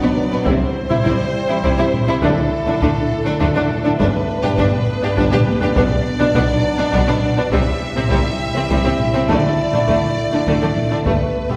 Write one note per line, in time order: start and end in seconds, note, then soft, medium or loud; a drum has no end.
0.00 0.09 B2 medium
0.00 0.42 F#3 loud
0.00 0.08 B3 medium
0.00 0.09 B3 medium
0.00 0.42 D4 loud
0.00 0.12 B4 medium
0.00 0.43 D5 medium
0.00 impact medium
0.17 taiko low-mid medium
0.31 0.38 B2 medium
0.31 0.37 B3 medium
0.31 0.39 B3 medium
0.31 0.41 B4 medium
0.45 0.53 C2 medium
0.45 0.56 C3 medium
0.45 0.53 C3 medium
0.45 2.19 G3 medium
0.45 0.52 C4 medium
0.45 0.51 E4 medium
0.45 3.95 E4 medium
0.45 2.24 C5 medium
0.45 taiko medium
0.90 0.97 C3 medium
0.90 1.00 C4 medium
0.90 0.96 E4 medium
0.90 taiko low-mid medium
1.04 1.12 C2 medium
1.04 1.14 C3 medium
1.04 1.12 C3 medium
1.04 1.11 C4 medium
1.04 1.10 E4 medium
1.04 taiko medium
1.20 taiko low-mid soft
1.49 1.56 C3 medium
1.49 1.59 E3 medium
1.49 1.55 E4 medium
1.63 1.71 C2 medium
1.63 1.73 C3 loud
1.63 1.70 C3 medium
1.63 1.70 C4 medium
1.63 1.69 E4 medium
1.63 taiko medium
1.79 1.85 C3 medium
1.79 1.88 C4 medium
1.79 1.85 E4 medium
1.94 taiko low-mid medium
2.08 2.15 C3 medium
2.08 2.17 C4 medium
2.08 2.14 E4 medium
2.22 2.29 D2 medium
2.22 2.29 D3 medium
2.22 2.32 D3 loud
2.22 2.28 A3 medium
2.22 5.59 A3 medium
2.22 2.29 D4 medium
2.22 3.96 A4 medium
2.22 taiko loud
2.67 2.73 D3 medium
2.67 2.73 D4 medium
2.67 2.76 E4 medium
2.67 taiko low-mid medium
2.81 2.88 D2 medium
2.81 2.87 D3 medium
2.81 2.91 D3 loud
2.81 2.89 A3 medium
2.81 2.87 D4 medium
2.81 taiko medium
2.97 taiko low-mid medium
3.26 3.32 D3 medium
3.26 3.35 A3 medium
3.26 3.32 D4 medium
3.26 3.33 D4 medium
3.40 3.47 D2 medium
3.40 3.47 D3 medium
3.40 3.50 D3 loud
3.40 3.46 A3 medium
3.40 3.46 D4 medium
3.40 taiko medium
3.56 3.62 D3 medium
3.56 3.62 D4 medium
3.56 3.64 E4 medium
3.71 taiko low-mid medium
3.85 3.91 D3 medium
3.85 3.91 D4 medium
3.85 3.94 E4 medium
3.99 4.06 G1 medium
3.99 4.06 G2 medium
3.99 4.08 G3 medium
3.99 5.59 B3 medium
3.99 4.06 D4 medium
3.99 5.73 B4 medium
3.99 taiko loud
4.43 4.50 G2 medium
4.43 4.49 D4 medium
4.43 4.50 G4 medium
4.43 4.53 G4 medium
4.43 taiko low-mid medium
4.58 4.65 G1 medium
4.58 4.65 G2 medium
4.58 4.67 G3 medium
4.58 4.64 D4 medium
4.58 taiko medium
4.73 taiko low-mid medium
5.03 5.09 G2 medium
5.03 5.12 B3 medium
5.03 5.09 D4 medium
5.03 5.10 G4 medium
5.17 5.24 G1 loud
5.17 5.24 G2 loud
5.17 5.26 G3 loud
5.17 5.23 D4 medium
5.17 5.24 D4 medium
5.17 taiko medium
5.32 5.39 G2 medium
5.32 5.38 D4 medium
5.32 5.41 G4 medium
5.32 5.38 G4 medium
5.32 taiko low-mid loud
5.47 taiko high medium
5.61 5.68 G2 medium
5.61 5.67 D4 medium
5.61 5.71 G4 medium
5.61 5.68 G4 medium
5.61 taiko low loud
5.76 5.83 B1 loud
5.76 5.83 B2 medium
5.76 7.49 F#3 loud
5.76 5.85 B3 medium
5.76 5.82 B3 medium
5.76 5.82 D4 loud
5.76 7.49 D4 loud
5.76 7.53 D5 medium
5.76 taiko loud
6.20 6.26 B2 medium
6.20 6.26 D4 medium
6.20 6.29 B4 medium
6.20 taiko low-mid medium
6.35 6.41 B1 loud
6.35 6.41 B2 medium
6.35 6.41 B3 loud
6.35 6.44 B3 medium
6.35 6.41 D4 medium
6.35 taiko medium
6.49 taiko low-mid medium
6.79 6.85 B2 medium
6.79 6.85 D4 medium
6.79 6.88 D4 medium
6.93 7.00 B1 loud
6.93 7.00 B2 loud
6.93 7.00 B3 medium
6.93 7.03 B3 loud
6.93 6.99 D4 loud
6.93 taiko medium
7.08 7.14 B2 medium
7.08 7.14 D4 medium
7.08 7.18 B4 medium
7.23 taiko low-mid medium
7.38 7.44 B2 medium
7.38 7.44 D4 medium
7.38 7.47 B4 medium
7.52 7.59 C2 medium
7.52 7.58 C3 loud
7.52 7.62 C3 medium
7.52 9.25 G3 loud
7.52 7.58 G3 medium
7.52 7.59 C4 medium
7.52 11.02 E4 loud
7.52 9.26 E5 medium
7.52 taiko loud
7.96 8.02 C3 medium
7.96 8.03 C4 medium
7.96 8.06 C4 medium
7.96 taiko low-mid medium
8.11 8.17 C2 loud
8.11 8.17 C3 loud
8.11 8.20 C3 medium
8.11 8.17 G3 medium
8.11 8.17 C4 medium
8.11 taiko medium
8.26 taiko low-mid medium
8.55 8.61 C3 medium
8.55 8.65 E3 medium
8.55 8.61 C4 medium
8.55 8.62 C4 medium
8.70 8.76 C2 loud
8.70 8.76 C3 loud
8.70 8.79 C3 loud
8.70 8.77 G3 medium
8.70 8.77 C4 medium
8.70 taiko medium
8.85 8.91 C3 medium
8.85 8.91 C4 medium
8.85 8.94 C4 medium
9.00 taiko low-mid medium
9.14 9.20 C3 medium
9.14 9.20 C4 medium
9.14 9.21 C4 medium
9.14 9.24 C4 medium
9.29 9.36 D2 loud
9.29 9.35 D3 loud
9.29 9.39 D3 medium
9.29 9.35 A3 medium
9.29 11.56 A3 loud
9.29 11.03 D5 medium
9.29 taiko loud
9.73 9.80 D3 medium
9.73 9.79 A3 medium
9.73 9.80 D4 medium
9.73 9.82 E4 medium
9.73 taiko low-mid medium
9.88 9.94 D2 medium
9.88 9.94 D3 medium
9.88 9.97 D3 medium
9.88 9.94 A3 medium
9.88 9.95 A3 medium
9.88 taiko medium
10.03 taiko low-mid medium
10.32 10.39 D3 medium
10.32 10.38 A3 medium
10.32 10.41 A3 medium
10.32 10.39 D4 medium
10.47 10.53 D2 medium
10.47 10.53 D3 medium
10.47 10.56 D3 loud
10.47 10.53 A3 medium
10.47 taiko medium
10.62 10.68 D3 medium
10.62 10.68 A3 medium
10.62 10.68 D4 medium
10.62 10.71 E4 medium
10.76 taiko low-mid medium
10.91 10.97 D3 medium
10.91 10.96 A3 medium
10.91 10.98 D4 medium
10.91 11.00 E4 medium
11.05 11.12 G1 medium
11.05 11.12 G2 medium
11.05 11.15 G3 medium
11.05 11.12 A3 medium
11.05 11.56 B3 medium
11.05 11.56 B4 medium
11.05 taiko medium
11.50 11.56 G2 medium
11.50 11.56 A3 medium
11.50 11.56 B3 medium
11.50 11.56 G4 medium
11.50 taiko low-mid medium